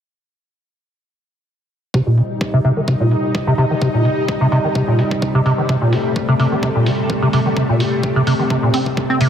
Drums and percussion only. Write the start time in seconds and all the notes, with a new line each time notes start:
1.94 kick
2.18 open hi-hat
2.41 kick
2.65 open hi-hat
2.88 kick
3.11 open hi-hat
3.35 kick
3.58 open hi-hat
3.82 kick
4.05 open hi-hat
4.29 kick
4.52 open hi-hat
4.75 kick
4.99 open hi-hat
5.11 kick
5.22 kick
5.46 open hi-hat
5.69 kick
5.93 open hi-hat
6.16 kick
6.40 open hi-hat
6.63 kick
6.86 open hi-hat
7.10 kick
7.33 open hi-hat
7.57 kick
7.80 open hi-hat
8.03 kick
8.27 open hi-hat
8.50 kick
8.74 open hi-hat
8.86 kick
8.97 kick
9.21 open hi-hat